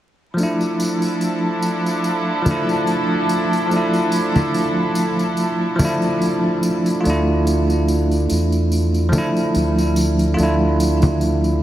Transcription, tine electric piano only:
0.34 F3 A3
0.40 D4 E4
2.42 F3 A3
2.48 D4 E4
3.67 F3 A3
3.73 D4 E4
5.76 F3 A3
5.82 D4 E4
7.01 A3 F4
7.07 D4 E4
9.09 F3 A3
9.15 D4 E4
10.34 A3 F4
10.40 D4 E4

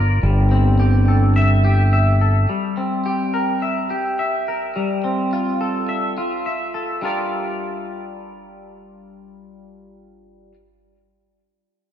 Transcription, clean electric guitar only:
Already playing: F4 A#4 D5
0.23 G3
0.51 C4
0.80 G4
1.08 A4
1.36 E5
1.64 G4
1.93 E5
2.21 A4
2.49 G3
2.77 C4
3.06 G4
3.34 A#4
3.62 E5
3.90 G4
4.19 E5
4.48 A#4
4.76 G3
5.04 C4
5.33 F4
5.61 A4
5.89 E5
6.18 F4
6.46 E5
6.74 A4
7.01 G3 D4 F4 A#4 D5

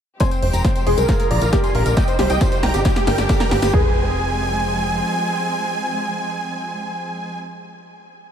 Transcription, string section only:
0.20 F3 G#3 C4 G4
1.09 D3 A#3 F4
1.97 C3 G3 D#4
2.85 D3 G3 G4
3.73 F3 G#3 C4

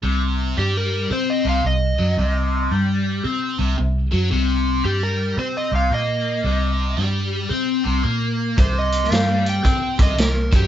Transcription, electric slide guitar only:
0.59 G4
0.77 A#4
1.13 C5
1.30 D#5
1.49 F5
1.66 D#5
4.85 G4
5.03 A#4
5.39 C5
5.57 D#5
5.75 F5
5.94 D#5
8.60 C5
8.79 D#5
9.13 F5
9.49 G5
10.02 D#5
10.20 A#4
10.56 G4

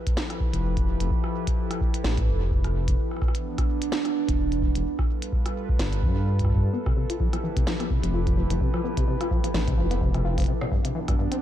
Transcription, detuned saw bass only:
0.54 F1
1.00 F1
2.04 A1
2.28 F1
4.29 E1
4.75 E1
5.79 G1
6.03 G2
8.04 F1
8.50 F1
9.54 A1
9.78 F1

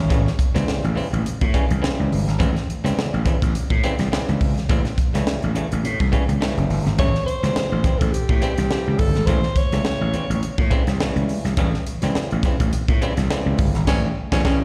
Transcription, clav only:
0.09 C#3 E3 G3 A3
0.26 G3 A3
0.54 C#3 E3 G3 C4
0.95 C#3 E3 G3 C4
1.12 G3 A3
1.25 G3 C4
1.54 C#3 E3 G3 C#4
1.69 G3
1.82 C#3 E3 G3 C4
2.39 C#3 E3 G3 C4
2.55 G3 C#4
2.84 C#3 E3 G3 C4
3.26 C#3 E3 G3 C4
3.43 G3 C#4
3.54 G3 C4
3.84 C#3 E3 G3 C4
4.00 C4
4.12 C#3 E3 G3 C4
4.69 C#3 E3 G3 C4
4.86 G3 C4
5.14 C#3 E3 G3 A3
5.55 C#3 E3 G3 A3
5.71 G3
5.84 G3 C#4
6.12 C#3 E3 G3 C#4
6.41 C3 E3 G3 A3
6.47 C#3
6.99 C#3 E3 G3 A3
7.16 C4
7.43 C#3 E3 G3 C4
7.85 C#3 E3 G3 C4
8.01 G3 C4
8.13 G3 C4
8.42 C#3 E3 G3 C4
8.71 C#3 E3 G3 C4
9.28 C#3 E3 G3 A3
9.44 G3 C4
9.72 C#3 E3 G3 A3
10.13 C#3 E3 G3 C4
10.31 A3
10.43 G3 C4
10.70 C#3 E3 G3 C4
10.87 G3 C4
11.01 C#3 E3 G3 A3
11.58 C#3 E3 G3 A3
11.74 G3 C#4
12.03 C#3 E3 G3 C4
12.44 C#3 E3 G3 C4
12.60 G3 C#4
12.73 G3 C4
13.02 C#3 E3 G3 C4
13.17 G3 C4
13.30 C#3 E3 G3 C4
13.87 C#3 E3 G3 C4
14.32 C#3 E3 G3 C4
14.45 C#3 E3 G3 C4

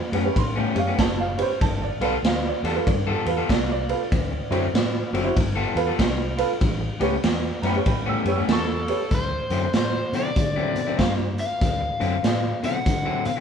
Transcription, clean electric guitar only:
0.12 A2 G3 B3 C#4
0.36 muted clean electric guitar stroke
0.56 A2 G3 B3 C#4
0.87 A2 G3 B3 C#4
1.18 muted clean electric guitar stroke
1.82 muted clean electric guitar stroke
2.01 G3 B3 F4 A4
2.26 muted clean electric guitar stroke
2.64 G3 B3 F4 A4
2.88 muted clean electric guitar stroke
3.07 G3 B3 F4 A4
3.37 G3 B3 F4 A4
3.69 muted clean electric guitar stroke
4.31 muted clean electric guitar stroke
4.51 D3 F#3 C4 E4
4.75 muted clean electric guitar stroke
5.13 D3 F#3 C4 E4
5.36 muted clean electric guitar stroke
5.56 G3 B3 F4 A4
5.87 G3 B3 F4 A4
6.18 muted clean electric guitar stroke
6.80 muted clean electric guitar stroke
7.00 A2 G3 B3 C#4
7.24 muted clean electric guitar stroke
7.63 A2 G3 B3 C#4
7.87 muted clean electric guitar stroke
8.06 A2 G3 B3 C#4
8.36 A2 G3 B3 C#4
8.68 muted clean electric guitar stroke
9.31 muted clean electric guitar stroke
9.51 D3 F#3 C4 E4
9.75 muted clean electric guitar stroke
10.13 D3 F#3 C4 E4
10.37 muted clean electric guitar stroke
10.56 D3 F#3 C4 E4
10.87 D3 F#3 C4 E4
11.19 muted clean electric guitar stroke
11.81 muted clean electric guitar stroke
12.00 D3 F#3 C4 E4
12.23 muted clean electric guitar stroke
12.63 D3 F#3 C4 E4
12.86 muted clean electric guitar stroke
13.05 D3 F#3 C4 E4
13.36 F#3 C4 E4

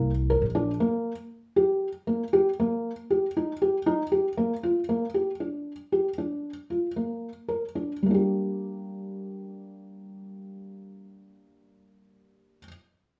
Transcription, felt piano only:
0.30 A#4
0.55 D4
0.80 A#3
1.56 G4
2.07 A#3
2.33 G4
2.60 A#3
3.10 G4
3.37 D#4
3.62 G4
3.86 D#4
4.12 G4
4.37 A#3
4.63 F4
4.89 A#3
5.14 G4
5.40 D4
5.92 G4
6.18 D4
6.70 F4
6.96 A#3
7.48 A#4
7.75 D4
8.03 G3 A#3
8.11 D4 G4

